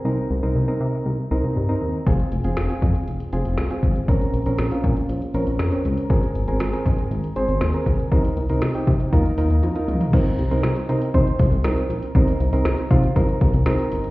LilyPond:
<<
  \new Staff \with { instrumentName = "Synth keys" } { \time 4/4 \key c \phrygian \tempo 4 = 119 <c' ees' bes'>8 r16 <c' ees' bes'>8 <c' ees' bes'>4 r16 <c' ees' bes'>8 r16 <c' ees' bes'>8 r16 | <c' f' aes'>8 r16 <c' f' aes'>8 <c' f' aes'>4 r16 <c' f' aes'>8 r16 <c' f' aes'>8 r16 | <c' des' bes'>8 r16 <c' des' bes'>8 <c' des' f'>4 r16 <c' des' bes'>8 r16 <c' des' bes'>8 r16 | <c' aes' bes'>8 r16 <c' aes' bes'>8 <c' aes' bes'>4 r16 <c' aes' c''>8 r16 <c' aes' bes'>8 r16 |
<c' ees' bes'>8 r16 <c' ees' bes'>8 <c' ees' g'>8. <ees' f' bes'>8 <ees' f' bes'>8 r16 <ees' f' bes'>8 r16 | <c' ees' bes'>8 r16 <c' ees' bes'>8 r16 <c' ees' bes'>8 <c' ees' c''>8. r16 <c' ees' bes'>8. r16 | <c' ees' bes'>8 r16 <c' ees' bes'>8 r16 <c' ees' f'>8 <c' ees' bes'>8. r16 <c' ees' bes'>8. r16 | }
  \new Staff \with { instrumentName = "Analog synth bass" } { \clef bass \time 4/4 \key c \phrygian c,16 r16 c,16 c,16 c,16 r16 c16 r16 c,16 r16 c,16 c,16 g,16 r16 ees,16 r16 | f,,16 r16 f,,16 f,,16 f,,16 r16 f,16 r16 f,,16 r16 f,,16 f,,16 c,16 r16 aes,,16 r16 | bes,,16 r16 bes,,16 bes,,16 bes,,16 r16 bes,16 r16 bes,,16 r16 bes,,16 bes,,16 f,16 r16 des,16 r16 | aes,,16 r16 aes,,16 aes,,16 aes,,16 r16 aes,16 r16 aes,,16 r16 aes,,16 aes,,16 ees,16 r16 c,16 r16 |
c,16 r16 c,16 c,16 c,16 r16 c16 r16 ees,16 r16 ees,16 ees,16 f,16 r16 des,16 r16 | c,16 r16 c,16 c,16 c,16 r16 c16 r16 c,16 r16 c,16 c,16 c,16 r16 bes,,16 r16 | c,16 r16 c,16 c,16 c,16 r16 c16 r16 c,16 r16 c,16 c,16 c,16 r16 g,,16 r16 | }
  \new DrumStaff \with { instrumentName = "Drums" } \drummode { \time 4/4 r4 r4 r4 r4 | <hh bd>16 hh16 hh16 hh16 <hh sn>16 hh16 <hh bd>16 hh16 hh16 hh16 hh16 hh16 <hh sn>16 hh16 <hh bd>16 hh16 | <hh bd>16 hh16 hh16 hh16 <hh sn>16 hh16 <hh bd>16 hh16 hh16 hh16 hh16 hh16 <hh sn>16 hh16 hh16 hh16 | <hh bd>16 hh16 hh16 hh16 <hh sn>16 hh16 <hh bd>16 hh16 hh16 hh16 hh16 hh16 <hh sn>16 hh16 <hh bd>16 hh16 |
<hh bd>16 hh16 hh16 hh16 <hh sn>16 hh16 <hh bd>16 hh16 <hh bd>16 hh16 hh16 hh16 <hh tommh>16 hh16 <hh toml>16 <hh tomfh>16 | <cymc hh bd>16 hh16 hh16 hh16 <hh sn>16 hh16 hh16 hh16 <hh bd>16 hh16 <hh bd>16 hh16 <hh sn>16 hh16 hh16 hh16 | <hh bd>16 hh16 hh16 hh16 <hh sn>16 hh16 <hh bd>16 hh16 <hh bd>16 hh16 <hh bd>16 hh16 <hh sn>16 hh16 hh16 hh16 | }
>>